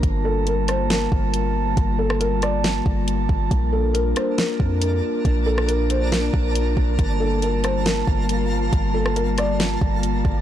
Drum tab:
HH |x---x-x-x---x---|x---x-x-x---x---|x---x-x-x---x---|x---x-x-x---x---|
SD |------r-o-------|---r--r-o-------|------r-o-------|---r----o-------|
BD |o---------o-----|o---------o---o-|o---------o-----|o---------o---o-|

HH |x---x-x-x---x---|x---x-x-x---x---|
SD |------r-o-------|---r--r-o-------|
BD |o---------o-----|o---------o---o-|